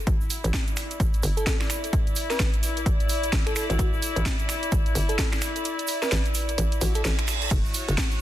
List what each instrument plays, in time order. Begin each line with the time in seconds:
0.07 fm bass A1, string section E4, kick, closed hi-hat, shaker
0.21 shaker
0.30 open hi-hat, shaker
0.44 fm bass A1, string section D5, closed hi-hat, shaker
0.53 kick, snare, closed hi-hat, shaker
0.67 closed hi-hat, shaker
0.76 finger snap, open hi-hat, shaker
0.91 closed hi-hat, shaker
1.00 fm bass A1, kick, closed hi-hat, shaker
1.13 closed hi-hat, shaker
1.23 fm bass G1, open hi-hat, shaker
1.37 fm electric piano A4, closed hi-hat, shaker
1.46 kick, snare, closed hi-hat, shaker
1.61 finger snap, snare, shaker
1.70 finger snap, open hi-hat, shaker
1.84 closed hi-hat, shaker
1.93 kick, closed hi-hat, shaker
2.07 closed hi-hat, shaker
2.16 open hi-hat, shaker
2.30 fm electric piano B4, snare, closed hi-hat, shaker
2.39 fm bass A1, kick, snare, closed hi-hat, shaker
2.53 closed hi-hat, shaker
2.63 open hi-hat, shaker
2.77 closed hi-hat, shaker
2.86 fm bass A1, kick, closed hi-hat, shaker
3.00 closed hi-hat, shaker
3.09 open hi-hat, shaker
3.23 closed hi-hat, shaker
3.32 fm bass A1, kick, snare, closed hi-hat, shaker
3.46 fm electric piano A4, finger snap, closed hi-hat, shaker
3.56 fm electric piano A4, finger snap, open hi-hat, shaker
3.70 fm bass A1, fm electric piano F#4, closed hi-hat, shaker
3.79 fm bass A1, fm electric piano F#4, kick, closed hi-hat, shaker
3.93 shaker
4.02 open hi-hat, shaker
4.16 fm bass A1, closed hi-hat, shaker
4.25 kick, snare, closed hi-hat, shaker
4.39 closed hi-hat, shaker
4.49 finger snap, open hi-hat, shaker
4.63 closed hi-hat, shaker
4.72 fm bass A1, kick, closed hi-hat, shaker
4.86 closed hi-hat, shaker
4.95 fm bass G1, open hi-hat, shaker
5.09 fm electric piano A4, closed hi-hat, shaker
5.18 kick, snare, closed hi-hat, shaker
5.32 finger snap, snare, shaker
5.42 finger snap, open hi-hat, shaker
5.56 closed hi-hat, shaker
5.64 closed hi-hat, shaker
5.79 closed hi-hat, shaker
5.87 open hi-hat, shaker
6.02 fm electric piano B4, snare, closed hi-hat, shaker
6.11 fm bass A1, snare, closed hi-hat, shaker
6.25 closed hi-hat, shaker
6.34 open hi-hat, shaker
6.49 closed hi-hat, shaker
6.58 fm bass A1, closed hi-hat, reverse cymbal, shaker
6.72 closed hi-hat, shaker
6.81 fm bass A1, fm electric piano F#4, open hi-hat, shaker
6.94 fm electric piano A4, closed hi-hat, shaker
7.05 fm bass A1, snare, closed hi-hat, shaker
7.19 finger snap, closed hi-hat, shaker
7.28 finger snap, open hi-hat, shaker
7.41 closed hi-hat, shaker
7.51 fm bass F#1, string section F#4, kick, closed hi-hat, ride, shaker
7.66 shaker
7.74 string section C#5, open hi-hat, shaker
7.88 fm bass F#1, closed hi-hat, shaker
7.98 kick, snare, closed hi-hat, ride, shaker
8.11 closed hi-hat, shaker